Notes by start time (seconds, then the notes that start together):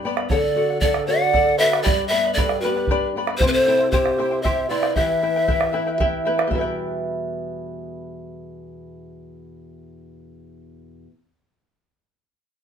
Already playing: G2
0.05 B3 B4 D5 G5 B5
0.17 B4 D5 B5, bombo rim
0.30 D3 A4 D5 F#5, bombo rim, bombo low
0.56 F#4 A4 D5 F#5
0.70 D5 F#5
0.80 A4 D5 F#5, bombo low
0.94 bombo rim
1.07 F#4 A4 D5 F#5
1.22 D5 F#5
1.33 A4 D5 F#5, bombo low
1.58 F#4 A4 B4 D5 E5 F#5
1.71 D5 F#5, bombo rim
1.82 G2 G4 B4 D5 G5 B5, bombo rim, bombo low
2.08 B4 D5 E5 G5 B5
2.12 B3
2.25 B4 D5 B5
2.33 A4 D5
2.37 D4 G4 B4 D5 G5 B5, bombo low
2.49 bombo rim
2.60 F#4 B4 G5
2.64 B3 B4 D5 B5
2.71 G4
2.77 B4 D5 B5
2.87 D4 G4 B4 D5 G5 B5, bombo low
3.16 B3 B4 D5 G5 B5
3.27 B4 D5 B5, bombo rim
3.38 E4 G4 C5 E5, bombo rim, bombo low
3.42 C3 C5 G5
3.47 G4 B4
3.52 A4 C5
3.67 E4 C5 E5 G5
3.79 E4 C5 G5
3.90 E4 G4 C5 E5 G5, bombo low
4.06 bombo rim
4.18 E4 C5 E5 G5
4.31 E4 C5 G5
4.42 E4 G4 C5 D5 E5 G5, bombo low
4.69 E4 B4 C5 D5 E5 G5
4.83 E4 C5 G5, bombo rim
4.93 E3 E4 G4 B4 E5 G5, bombo rim, bombo low
5.22 E4 B4 E5 G5
5.36 E4 B4 G5
5.48 E4 G4 B4 E5 G5, bombo low
5.61 bombo rim
5.73 E4 B4 E5 G5, bombo rim
5.87 E4 B4 G5
6.00 E4 G4 B4 E5 G5, bombo low
6.25 E4 B4 E5 G5
6.38 E4 B4 G5, bombo rim
6.47 E2 B2 G4 E5, bombo low
6.52 G3 E4 B4
6.58 B4 E5 G5